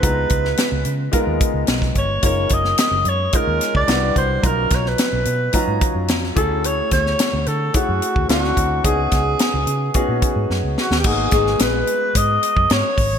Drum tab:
CC |----------------|----------------|----------------|----------------|
HH |x-x-x-x-x-x-x-x-|x-x-x-x-x-x-x-x-|x-x-x-x-x-x-x-x-|x-x-x-x-x-x-x-x-|
SD |---oo-------oo--|---oo-----o-o---|--ooo-------oo--|--ooo-------oo--|
BD |o-o-----o-o--oo-|o-o-----o--o--o-|o-o-----o-o---o-|--o-----o--o--o-|

CC |----------------|x---------------|
HH |x-x-x-x-x-x-----|--x-x-x-x-x-x-o-|
SD |--o-o-------o-oo|--ooo-------o---|
BD |o-o-----o-o-----|o-o-----o--o--o-|